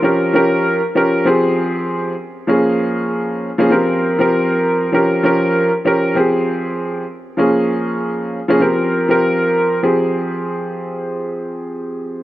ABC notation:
X:1
M:4/4
L:1/16
Q:"Swing 16ths" 1/4=98
K:Fm
V:1 name="Upright piano"
[F,DGB]2 [F,DGB]3 z [F,DGB]2 [F,CGA]6 z2 | [F,B,DA]6 z [F,B,DA] [F,CGB]3 [F,CGB]4- [F,CGB] | [F,DGB]2 [F,DGB]3 z [F,DGB]2 [F,CGA]6 z2 | [F,B,DA]6 z [F,B,DA] [F,CGB]3 [F,CGB]4- [F,CGB] |
[F,CGA]16 |]